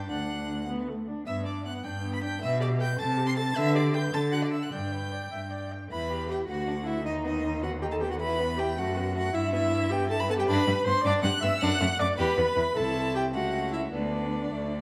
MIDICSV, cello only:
0, 0, Header, 1, 2, 480
1, 0, Start_track
1, 0, Key_signature, 1, "major"
1, 0, Tempo, 383877
1, 129, Time_signature, 6, 3, 24, 8
1, 4926, Tempo, 394997
1, 7325, Key_signature, 1, "minor"
1, 7326, Tempo, 379987
1, 13092, Key_signature, 1, "major"
1, 15486, Tempo, 391645
1, 18471, End_track
2, 0, Start_track
2, 0, Title_t, "Cello"
2, 0, Program_c, 0, 42
2, 0, Note_on_c, 0, 43, 77
2, 124, Note_on_c, 0, 38, 66
2, 143, Note_off_c, 0, 43, 0
2, 1343, Note_off_c, 0, 38, 0
2, 1588, Note_on_c, 0, 43, 72
2, 2226, Note_off_c, 0, 43, 0
2, 2315, Note_on_c, 0, 43, 76
2, 2944, Note_off_c, 0, 43, 0
2, 3026, Note_on_c, 0, 47, 83
2, 3656, Note_off_c, 0, 47, 0
2, 3743, Note_on_c, 0, 48, 91
2, 4367, Note_off_c, 0, 48, 0
2, 4449, Note_on_c, 0, 50, 96
2, 5078, Note_off_c, 0, 50, 0
2, 5166, Note_on_c, 0, 50, 89
2, 5798, Note_off_c, 0, 50, 0
2, 5897, Note_on_c, 0, 43, 68
2, 6526, Note_off_c, 0, 43, 0
2, 6603, Note_on_c, 0, 43, 58
2, 7242, Note_off_c, 0, 43, 0
2, 7329, Note_on_c, 0, 40, 68
2, 8000, Note_off_c, 0, 40, 0
2, 8054, Note_on_c, 0, 38, 69
2, 8773, Note_on_c, 0, 39, 77
2, 8792, Note_off_c, 0, 38, 0
2, 10217, Note_on_c, 0, 40, 73
2, 10236, Note_off_c, 0, 39, 0
2, 10945, Note_on_c, 0, 42, 82
2, 10964, Note_off_c, 0, 40, 0
2, 11650, Note_off_c, 0, 42, 0
2, 11657, Note_on_c, 0, 43, 92
2, 13064, Note_off_c, 0, 43, 0
2, 13091, Note_on_c, 0, 43, 116
2, 13187, Note_off_c, 0, 43, 0
2, 13337, Note_on_c, 0, 43, 79
2, 13430, Note_off_c, 0, 43, 0
2, 13567, Note_on_c, 0, 43, 88
2, 13663, Note_off_c, 0, 43, 0
2, 13805, Note_on_c, 0, 43, 118
2, 13901, Note_off_c, 0, 43, 0
2, 14044, Note_on_c, 0, 43, 80
2, 14140, Note_off_c, 0, 43, 0
2, 14292, Note_on_c, 0, 43, 91
2, 14387, Note_off_c, 0, 43, 0
2, 14534, Note_on_c, 0, 42, 112
2, 14628, Note_off_c, 0, 42, 0
2, 14773, Note_on_c, 0, 42, 82
2, 14867, Note_off_c, 0, 42, 0
2, 15018, Note_on_c, 0, 42, 84
2, 15112, Note_off_c, 0, 42, 0
2, 15253, Note_on_c, 0, 40, 105
2, 15347, Note_off_c, 0, 40, 0
2, 15482, Note_on_c, 0, 40, 77
2, 15577, Note_off_c, 0, 40, 0
2, 15717, Note_on_c, 0, 40, 82
2, 15812, Note_off_c, 0, 40, 0
2, 15958, Note_on_c, 0, 36, 89
2, 16672, Note_on_c, 0, 37, 83
2, 16690, Note_off_c, 0, 36, 0
2, 17389, Note_off_c, 0, 37, 0
2, 17396, Note_on_c, 0, 38, 71
2, 18109, Note_off_c, 0, 38, 0
2, 18119, Note_on_c, 0, 38, 69
2, 18471, Note_off_c, 0, 38, 0
2, 18471, End_track
0, 0, End_of_file